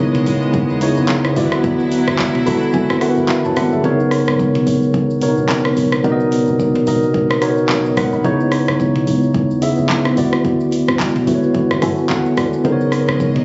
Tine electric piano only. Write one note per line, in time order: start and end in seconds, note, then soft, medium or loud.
0.00 0.32 C#3 loud
0.00 0.33 B3 loud
0.00 0.33 D#4 loud
0.00 0.33 E4 loud
0.00 0.36 C#5 loud
0.81 1.36 C#3 medium
0.81 1.35 B3 medium
0.81 1.36 D#4 medium
0.81 1.35 E4 medium
0.81 1.37 C#5 loud
1.35 2.25 D3 loud
1.35 2.25 B3 loud
1.35 2.25 E4 medium
1.35 2.26 F#4 medium
1.35 2.26 D5 loud
2.46 2.92 D3 medium
2.46 2.92 B3 medium
2.46 2.92 E4 medium
2.46 2.93 F#4 medium
2.46 2.93 A4 loud
2.46 2.72 B5 medium
2.74 3.00 G#5 medium
3.01 3.69 D3 loud
3.01 3.69 B3 medium
3.01 3.69 E4 medium
3.01 3.70 F#4 medium
3.01 3.10 A#4 medium
3.01 3.27 F#5 medium
3.09 3.33 B4 loud
3.29 3.45 D5 medium
3.29 3.55 E5 medium
3.29 3.44 B5 medium
3.45 3.56 C#5 medium
3.45 3.56 A5 medium
3.57 3.72 A4 medium
3.57 3.82 D5 medium
3.57 3.72 F#5 medium
3.73 3.99 G#4 medium
3.73 3.99 E5 medium
3.83 4.73 C#3 loud
3.83 4.73 B3 loud
3.83 3.92 C#4 medium
3.83 4.73 A#4 loud
3.83 4.74 C#5 loud
3.91 4.76 D#4 loud
5.21 5.89 B2 medium
5.21 5.89 B3 medium
5.21 5.29 D4 medium
5.21 5.90 A#4 medium
5.21 5.90 C#5 medium
5.28 5.93 D#4 medium
6.03 6.72 B2 loud
6.03 6.72 B3 loud
6.03 6.72 D#4 loud
6.03 6.72 A#4 loud
6.03 6.12 D5 loud
6.12 6.76 D#5 loud
6.86 7.32 B2 medium
6.86 7.32 B3 medium
6.86 7.33 D#4 medium
6.86 7.33 A#4 medium
6.86 7.33 D#5 loud
7.41 8.09 B2 medium
7.41 8.09 B3 medium
7.41 8.10 D#4 medium
7.41 7.70 A#4 medium
7.41 7.70 C#5 loud
7.69 7.96 F#4 medium
7.69 7.96 D#5 medium
7.97 8.12 A#4 medium
7.97 8.12 F#5 medium
8.13 8.39 D#5 medium
8.13 8.39 B5 medium
8.24 9.13 C#3 loud
8.24 9.13 B3 loud
8.24 9.13 D#4 loud
8.24 9.14 E4 loud
8.24 9.14 C#5 loud
9.61 10.17 C#3 medium
9.61 10.15 B3 medium
9.61 10.16 E4 medium
9.61 10.17 D#5 medium
9.61 10.18 E5 loud
10.16 11.06 D3 medium
10.16 11.06 B3 medium
10.16 11.06 E4 medium
10.16 11.06 F#4 medium
10.16 11.07 D5 loud
11.26 11.72 D3 medium
11.26 11.73 B3 medium
11.26 11.73 E4 medium
11.26 11.73 F#4 medium
11.26 11.35 B4 medium
11.35 11.77 C#5 medium
11.81 12.50 D3 medium
11.81 12.50 B3 medium
11.81 12.50 E4 medium
11.81 12.50 F#4 medium
11.81 12.51 A4 loud
11.81 12.08 G#5 medium
12.10 12.35 F#5 medium
12.37 12.63 D5 medium
12.64 13.45 C#3 loud
12.64 13.45 B3 loud
12.64 13.45 D#4 loud
12.64 13.45 A#4 loud
12.64 12.73 C5 medium
12.72 13.45 C#5 loud